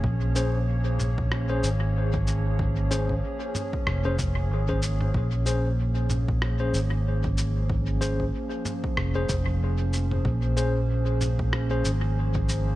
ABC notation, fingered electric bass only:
X:1
M:4/4
L:1/8
Q:"Swing 16ths" 1/4=94
K:Bbm
V:1 name="Fingered electric bass" clef=bass
B,,,4- B,,, A,,,3- | A,,,2 z2 F,,,2 A,,,2 | B,,,4- B,,, A,,,3- | A,,,2 z2 F,,, F,,,3 |
B,,,4- B,,, A,,,3 |]